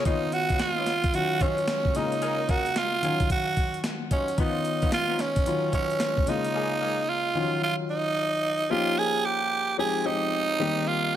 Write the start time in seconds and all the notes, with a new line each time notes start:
0.05 D#3 B3 C#4 D#4 F4 B4 C#5, kick, closed hi-hat
0.32 F#4, closed hi-hat
0.49 C#4 D#4 F4 B4 C#5, kick, closed hi-hat
0.59 F4, snare, closed hi-hat
0.77 C#4 D#4 F4 B4 C#5
0.86 snare, closed hi-hat
1.04 kick, closed hi-hat
1.14 D#3 F#3 C#4 F4 F#4, closed hi-hat
1.40 C#4 D#4 F4 F#4 C#5, kick, closed hi-hat
1.58 closed hi-hat
1.68 snare, closed hi-hat
1.85 kick
1.94 C#3 G#3 A#3 C#4 D#4 F4 G#4 A#4, closed hi-hat
2.12 closed hi-hat
2.22 A#3 C#4 G#4 A#4, closed hi-hat
2.49 A#3 C#4 F#4 G#4 A#4, kick, closed hi-hat
2.66 closed hi-hat
2.76 F4, snare, closed hi-hat
3.02 D#3 F#3 C#4 D#4 F4 F#4 F5, closed hi-hat
3.20 kick, closed hi-hat
3.30 F#4, kick, closed hi-hat
3.57 kick, closed hi-hat
3.74 closed hi-hat
3.84 snare, closed hi-hat
4.11 F#3 C#4 D#4 F4 F#4, kick, closed hi-hat
4.28 closed hi-hat
4.37 D#3 F3 B3 C#4 D#4 F4, kick, closed hi-hat
4.65 closed hi-hat
4.82 F3 B3 C#4 D#4 F4, kick, closed hi-hat
4.92 F4, snare, closed hi-hat
5.09 F3 B3 C#4 D#4 F4
5.19 C#4, snare, closed hi-hat
5.36 kick, closed hi-hat
5.46 D#3 F#3 C#4 F4, closed hi-hat
5.73 F#3 C#4 D#4 F4 F#4, kick, closed hi-hat
5.90 closed hi-hat
6.00 snare, closed hi-hat
6.17 kick
6.26 C#3 G#3 A#3 C#4 D#4 F4 G#4, closed hi-hat
6.45 closed hi-hat
6.54 G#3 A#3 C#4 G#4
6.81 G#3 A#3 C#4 G#4
7.09 F4
7.35 D#3 F3 F#3 C#4 D#4 F4 F#4
7.42 F#3
7.63 F4
7.90 D#4
8.70 F3 A#3 C#4 D#4 F4 G4
8.98 G#4
9.25 G4
9.78 F3 G#3 C4 D#4 G4 G#4
10.05 F3 G#3 C4 D#4 G4
10.59 D#3 G3 A#3 C4 G4
10.88 F4